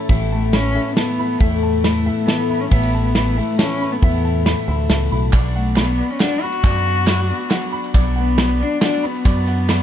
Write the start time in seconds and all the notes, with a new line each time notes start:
Already playing: A1 A2 A3 C#4 E4 C#5 E5
0.09 A1 A2 E3 A3 B3 E4 E5, kick, ride
0.32 A3 A5
0.52 E3 A3 B3 C#4 E4 B5, snare, ride
0.74 A3 B3 E4 A4 E5
0.96 E3 A3 B3 E4 A5, snare, ride
1.18 A3 B3 E4 B5
1.39 E2 A2 E3 A3 B3 E4 E5, kick, ride
1.63 A5
1.84 E3 A3 B3 E4 B5, snare, ride
2.06 A3 B3 E4 A4 E5
2.26 E3 A3 B3 A5, snare, ride
2.30 E4
2.50 E4 B5
2.60 C#4
2.71 A1 A2 E3 A3 B3 C#4 E4 E5, kick, ride
2.83 E4
2.95 A5
3.04 B3
3.15 E3 A3 B3 E4 B5, snare, ride
3.37 A3 B3 E4 A4 E5
3.58 E3 A3 B3 C#4 E4 A5, snare, ride
3.82 A3 B3 E4 B5
3.92 B3
4.02 E2 A2 E3 A3 B3 E4 E5, kick, ride
4.25 A5
4.46 E3 A3 B3 E4 B5, snare, ride
4.68 D2 A3 B3 E4 A4 E5
4.89 C#2 E3 A3 B3 E4 A5, snare, ride
5.11 B1 A3 B3 E4 B5
5.33 B1 B2 F#3 B3 D4 F#4 D5, kick, clap, ride
5.55 A3 F#5
5.76 F#3 B3 D4 F#4 B5, snare, clap, ride
5.88 clap
5.99 D5
6.10 C#4
6.20 F#3 B3 D4 F#4 F#5, snare, clap, ride
6.31 clap
6.42 B3 D4 F#4 B5
6.53 clap
6.63 F#2 B2 F#3 B3 D4 F#4 D5, kick, clap, ride
6.86 F#5
7.07 F#3 B3 D4 F#4 B5, snare, clap, ride
7.19 clap
7.29 B3 D4 F#4 D5
7.50 F#3 B3 D4 F#4 F#5, snare, clap, ride
7.62 clap
7.72 B5
7.85 clap
7.94 B1 B2 F#3 B3 D4 F#4 D5, kick, clap, ride
8.16 B3 F#5
8.38 F#3 B3 D4 F#4 B5, snare, clap, ride
8.49 clap
8.60 D4 D5
8.81 F#3 B3 D4 F#4 F#5, snare, clap, ride
8.93 clap
9.03 B3 B5
9.15 clap
9.25 F#2 B2 F#3 B3 D4 F#4 D5, kick, clap, ride
9.47 F#5, clap
9.68 F#3 B3 D4 F#4 B5, snare, clap, ride